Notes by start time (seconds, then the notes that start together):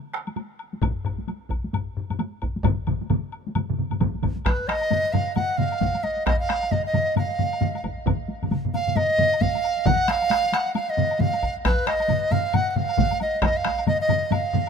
0.14 taiko rim
0.27 taiko high, high woodblock
0.36 taiko high, high woodblock
0.59 high woodblock
0.73 taiko high
0.82 taiko, taiko low-mid, taiko high, high woodblock
1.05 taiko low-mid, high woodblock
1.19 taiko high
1.28 taiko high, high woodblock
1.50 taiko, high woodblock
1.64 taiko high
1.74 taiko low-mid, taiko high, high woodblock
1.97 taiko low-mid
2.10 taiko low-mid, taiko high, high woodblock
2.19 taiko high, high woodblock
2.42 taiko, high woodblock
2.56 taiko high
2.65 taiko, taiko low-mid, taiko mid, taiko high, high woodblock
2.87 taiko low-mid, taiko mid, high woodblock
3.01 taiko high
3.10 taiko low-mid, taiko mid, taiko high, high woodblock
3.32 high woodblock
3.47 taiko high
3.55 taiko low-mid, taiko mid, taiko high, high woodblock
3.69 taiko low-mid, taiko mid
3.78 taiko low-mid, taiko mid
3.91 taiko low-mid, taiko mid, taiko high, high woodblock
4.01 taiko, taiko low-mid, taiko mid, taiko high, high woodblock
4.14 taiko high
4.23 taiko, taiko low-mid, taiko mid, high woodblock
4.37 taiko high
4.45 B4, taiko rim, taiko, taiko high, high woodblock
4.59 taiko high
4.68 D#5, taiko rim, taiko high
4.81 taiko high, high woodblock
4.91 taiko low-mid, taiko mid, taiko high, high woodblock
5.04 taiko high
5.13 F5, taiko low-mid, taiko mid, taiko high, high woodblock
5.27 taiko high
5.35 F#5, taiko low-mid, taiko mid, taiko high, high woodblock
5.50 taiko high
5.57 F5, taiko low-mid, taiko mid, taiko high
5.72 taiko high, high woodblock
5.81 taiko, taiko low-mid, taiko mid, taiko high
5.95 taiko high, high woodblock
6.03 D#5, taiko high, high woodblock
6.18 taiko high
6.26 D#5, taiko rim, taiko, taiko high, high woodblock
6.40 F5, taiko high
6.49 taiko rim, taiko high
6.62 taiko high, high woodblock
6.71 D#5, taiko low-mid, taiko mid, taiko high, high woodblock
6.86 D#5, taiko high
6.93 taiko low-mid, taiko mid, taiko high, high woodblock
7.09 taiko high
7.16 F5, taiko low-mid, taiko mid, taiko high, high woodblock
7.30 taiko high
7.39 taiko low-mid, taiko mid, taiko high
7.53 taiko high, high woodblock
7.61 taiko low-mid, taiko mid, taiko high
7.75 taiko high, high woodblock
7.84 taiko, taiko high, high woodblock
7.97 taiko high
8.06 taiko, taiko low-mid, taiko mid, taiko high, high woodblock
8.19 taiko high
8.29 taiko high
8.42 taiko low-mid, taiko mid, taiko high, high woodblock
8.51 taiko low-mid, taiko mid, taiko high, high woodblock
8.65 taiko low-mid, taiko mid, taiko high
8.74 F5, taiko low-mid, taiko mid, taiko high, high woodblock
8.87 taiko low-mid, taiko mid, taiko high
8.96 D#5, taiko low-mid, taiko mid, taiko high, high woodblock
9.10 taiko high
9.18 taiko low-mid, taiko mid, taiko high
9.32 taiko high, high woodblock
9.41 F5, taiko, taiko low-mid, taiko mid, taiko high
9.55 taiko high, high woodblock
9.64 high woodblock
9.77 taiko high
9.86 F#5, taiko, taiko low-mid, taiko mid, taiko high, high woodblock
10.00 taiko high
10.08 F5, taiko rim, taiko high
10.22 taiko high, high woodblock
10.31 taiko rim, taiko high, high woodblock
10.44 taiko high
10.53 F#5, taiko rim, taiko high, high woodblock
10.66 taiko high
10.75 F5, taiko high, high woodblock
10.89 D#5, taiko high
10.97 taiko low-mid, taiko mid, taiko high
11.11 taiko high, high woodblock
11.20 F5, taiko low-mid, taiko mid, taiko high
11.33 taiko high, high woodblock
11.43 taiko, high woodblock
11.56 taiko high
11.65 B4, taiko rim, taiko, taiko high, high woodblock
11.78 taiko high
11.86 D#5, taiko rim, taiko high
12.00 taiko high, high woodblock
12.08 taiko low-mid, taiko mid, taiko high, high woodblock
12.22 taiko high
12.31 F5, taiko low-mid, taiko mid, taiko high, high woodblock
12.45 taiko high
12.54 F#5, taiko low-mid, taiko mid, taiko high, high woodblock
12.71 F#5
12.76 F5, taiko low-mid, taiko mid, taiko high
12.89 taiko high, high woodblock
12.97 taiko, taiko low-mid, taiko mid, taiko high
13.11 taiko high, high woodblock
13.20 D#5, taiko high, high woodblock
13.35 taiko high
13.42 D#5, taiko rim, taiko, taiko high, high woodblock
13.57 F5, taiko high
13.64 taiko rim, taiko high
13.79 taiko high, high woodblock
13.87 D#5, taiko low-mid, taiko mid, taiko high, high woodblock
14.01 D#5, taiko high
14.09 taiko low-mid, taiko mid, taiko high, high woodblock
14.22 taiko high
14.31 F5, taiko low-mid, taiko mid, taiko high, high woodblock
14.44 taiko high
14.53 taiko low-mid, taiko mid, taiko high